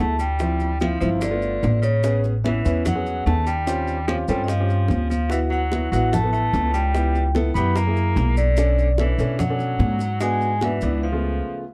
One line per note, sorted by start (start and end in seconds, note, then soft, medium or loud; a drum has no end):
0.00 0.95 D2 medium
0.00 0.18 G#3 medium
0.00 0.18 A3 medium
0.00 0.19 A3 medium
0.00 0.19 E4 medium
0.00 0.19 A5 medium
0.00 high bongo soft
0.00 low bongo medium
0.19 0.77 G3 medium
0.19 0.83 G5 medium
0.19 high bongo soft
0.19 high conga soft
0.19 maracas medium
0.39 0.69 F3 medium
0.39 0.69 C4 medium
0.39 0.69 E4 medium
0.39 high bongo medium
0.39 high conga soft
0.39 maracas medium
0.60 high bongo soft
0.60 high conga soft
0.60 maracas soft
0.80 0.99 F3 medium
0.80 0.95 F3 medium
0.80 0.95 C4 medium
0.80 0.95 E4 medium
0.80 1.01 F5 medium
0.80 high bongo medium
0.80 high conga loud
0.80 maracas soft
1.00 1.59 G1 medium
1.00 1.10 F3 medium
1.00 1.22 F3 medium
1.00 1.22 C4 medium
1.00 1.22 E4 medium
1.00 1.12 F5 medium
1.00 high conga soft
1.00 maracas medium
1.21 1.79 D3 medium
1.21 1.80 D5 medium
1.21 high bongo medium
1.21 high conga soft
1.21 maracas medium
1.31 1.82 A3 medium
1.31 1.82 B3 medium
1.31 1.82 F4 medium
1.42 high bongo soft
1.42 high conga soft
1.42 maracas soft
1.63 2.59 A1 medium
1.63 high bongo soft
1.63 low bongo medium
1.63 high conga medium
1.63 maracas soft
1.82 2.20 C#3 medium
1.82 2.21 C#5 medium
1.82 high bongo soft
1.82 maracas medium
2.04 2.32 B3 medium
2.04 2.33 C#4 medium
2.04 2.33 G#4 medium
2.04 high bongo medium
2.04 high conga soft
2.04 maracas medium
2.24 high bongo soft
2.24 high conga soft
2.24 maracas soft
2.44 2.83 E3 medium
2.44 2.59 B3 medium
2.44 2.59 C#4 medium
2.44 2.59 E4 medium
2.44 2.83 E5 medium
2.44 high bongo medium
2.44 high conga medium
2.44 maracas soft
2.65 3.23 E2 medium
2.65 2.87 B3 medium
2.65 2.87 C#4 medium
2.65 2.87 E4 medium
2.65 high conga soft
2.65 maracas medium
2.85 3.23 F#3 medium
2.85 3.29 F#5 medium
2.85 high bongo medium
2.85 high conga soft
2.85 low conga medium
2.85 maracas medium
2.95 3.46 B3 medium
2.95 3.46 C#4 medium
2.95 3.46 G#4 medium
3.06 high bongo soft
3.06 high conga soft
3.06 maracas soft
3.26 4.23 D#2 medium
3.26 3.45 A3 medium
3.26 3.48 A5 medium
3.26 high bongo soft
3.26 low bongo medium
3.26 high conga medium
3.26 maracas soft
3.46 4.04 G3 medium
3.46 4.10 G5 medium
3.46 high bongo soft
3.46 high conga soft
3.46 maracas medium
3.67 3.96 C4 medium
3.67 3.96 C#4 medium
3.67 3.96 F4 medium
3.67 3.96 G4 medium
3.67 high bongo medium
3.67 high conga soft
3.67 maracas medium
3.88 high bongo soft
3.88 high conga soft
3.88 maracas soft
4.07 4.17 F3 medium
4.07 4.23 C4 medium
4.07 4.23 C#4 medium
4.07 4.23 F4 medium
4.07 4.23 G4 medium
4.07 4.18 F5 medium
4.07 high bongo medium
4.07 high conga medium
4.07 maracas soft
4.28 4.86 G2 medium
4.28 4.41 G3 medium
4.28 4.50 C4 medium
4.28 4.50 C#4 medium
4.28 4.51 F4 medium
4.28 4.51 A4 medium
4.28 4.42 G5 medium
4.28 high conga soft
4.28 maracas medium
4.44 4.48 D#3 medium
4.44 4.50 D#5 medium
4.48 5.06 F3 medium
4.48 5.11 F5 loud
4.48 high bongo medium
4.48 high conga soft
4.48 maracas medium
4.60 5.10 C4 medium
4.60 5.10 C#4 medium
4.60 5.10 F4 medium
4.60 5.10 G4 medium
4.69 high bongo soft
4.69 high conga soft
4.69 maracas soft
4.88 5.86 D2 medium
4.88 high bongo soft
4.88 low bongo medium
4.88 high conga medium
4.88 maracas soft
5.10 5.29 F3 medium
5.10 5.32 F5 medium
5.10 high bongo soft
5.10 high conga medium
5.10 maracas medium
5.30 5.40 E3 medium
5.30 5.60 B3 medium
5.30 5.60 E4 medium
5.30 5.60 F#4 medium
5.30 5.41 E5 medium
5.30 high bongo medium
5.30 maracas medium
5.50 5.89 F#3 medium
5.50 5.90 F#5 medium
5.50 high bongo soft
5.50 high conga soft
5.50 maracas soft
5.72 5.86 B3 medium
5.72 5.87 E4 medium
5.72 5.86 F#4 medium
5.72 high bongo medium
5.72 high conga medium
5.72 maracas soft
5.92 6.49 A1 medium
5.92 6.11 F#3 medium
5.92 6.14 B3 medium
5.92 6.14 E4 medium
5.92 6.14 F#4 medium
5.92 6.13 F#5 loud
5.92 high conga soft
5.92 maracas medium
6.12 6.31 A3 medium
6.12 6.32 A5 loud
6.12 high bongo medium
6.12 high conga soft
6.12 low conga medium
6.12 maracas medium
6.24 6.73 B3 medium
6.24 6.73 E4 medium
6.24 6.73 A4 medium
6.33 6.71 A3 medium
6.33 6.75 A5 loud
6.33 high bongo soft
6.33 high conga soft
6.33 maracas soft
6.53 7.50 C#2 medium
6.53 high bongo soft
6.53 low bongo medium
6.53 high conga medium
6.53 maracas soft
6.73 7.31 G3 medium
6.73 7.31 G5 loud
6.73 high bongo soft
6.73 high conga soft
6.73 maracas medium
6.94 7.23 B3 medium
6.94 7.23 E4 medium
6.94 7.23 G4 medium
6.94 high bongo medium
6.94 high conga soft
6.94 maracas medium
7.15 high bongo soft
7.15 high conga soft
7.15 maracas soft
7.35 7.50 B3 medium
7.35 7.50 E4 medium
7.35 7.50 A4 loud
7.35 high bongo medium
7.35 high conga medium
7.35 maracas soft
7.54 8.13 F#2 medium
7.54 7.74 B3 medium
7.54 7.77 B3 medium
7.54 7.77 E4 medium
7.54 7.77 G4 medium
7.54 7.74 B5 loud
7.54 maracas medium
7.75 8.33 A#3 medium
7.75 8.33 A#5 loud
7.75 high bongo medium
7.75 high conga soft
7.75 maracas medium
7.87 8.37 A#3 medium
7.87 8.37 E4 medium
7.87 8.37 G#4 medium
7.96 high bongo soft
7.96 high conga soft
7.96 maracas soft
8.16 9.13 B1 medium
8.16 high bongo soft
8.16 low bongo medium
8.16 high conga medium
8.16 maracas soft
8.37 8.95 D3 medium
8.37 9.00 D5 loud
8.37 high bongo soft
8.37 maracas medium
8.57 8.86 C#4 medium
8.57 8.86 D4 medium
8.57 8.87 A4 medium
8.57 high bongo medium
8.57 high conga soft
8.57 maracas medium
8.79 high bongo soft
8.79 high conga soft
8.79 maracas soft
8.98 9.37 E3 medium
8.98 9.13 C#4 medium
8.98 9.14 D4 medium
8.98 9.14 A4 medium
8.98 9.41 E5 medium
8.98 high bongo medium
8.98 high conga medium
8.98 maracas soft
9.18 9.76 B2 medium
9.18 9.41 C#4 medium
9.18 9.41 D4 medium
9.18 9.41 A4 medium
9.18 high conga soft
9.18 maracas medium
9.39 10.17 F#3 medium
9.39 10.24 F#5 medium
9.39 high bongo medium
9.39 high conga soft
9.39 low conga medium
9.39 maracas medium
9.50 10.00 C#4 medium
9.50 10.00 D4 medium
9.50 10.00 A4 medium
9.59 high bongo soft
9.59 high conga soft
9.59 maracas soft
9.79 10.76 G#2 loud
9.79 high bongo soft
9.79 low bongo medium
9.79 high conga medium
9.79 maracas soft
9.99 high bongo soft
9.99 high conga soft
9.99 maracas medium
10.20 10.59 G#3 medium
10.20 10.50 B3 medium
10.20 10.50 D4 medium
10.20 10.50 F#4 medium
10.20 10.64 G#5 loud
10.20 high bongo medium
10.20 high conga soft
10.20 maracas medium
10.41 high bongo soft
10.41 high conga soft
10.41 maracas soft
10.61 11.00 E3 medium
10.61 10.77 B3 medium
10.61 10.77 D4 medium
10.61 10.77 F#4 medium
10.61 11.05 E5 medium
10.61 high bongo medium
10.61 high conga loud
10.61 maracas soft
10.81 11.40 C#2 medium
10.81 11.03 B3 medium
10.81 11.03 D4 medium
10.81 11.03 E4 medium
10.81 high conga soft
10.81 maracas medium
11.03 11.60 F3 medium
11.03 11.60 F5 medium
11.12 11.63 C#3 medium
11.12 11.63 A3 medium
11.12 11.63 B3 medium
11.12 11.63 F4 medium